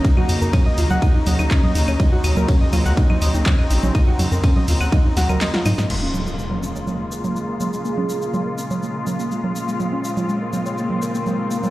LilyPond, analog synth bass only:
\new Staff \with { instrumentName = "Analog synth bass" } { \clef bass \time 4/4 \key bes \minor \tempo 4 = 123 r8 f,16 f,16 r8 ees,16 ees,16 r8 ees,16 ees,16 r8 ees,16 ees,16 | r8 ees,16 ees,16 r8 ees,16 des,16 r8 ees,16 ees,16 r8 bes,,16 bes,,16 | r8 f,16 f,16 r8 ees,16 ees,16 r8 ees,16 ees,16 r8 aes,16 aes,16 | r1 |
r1 | r1 | }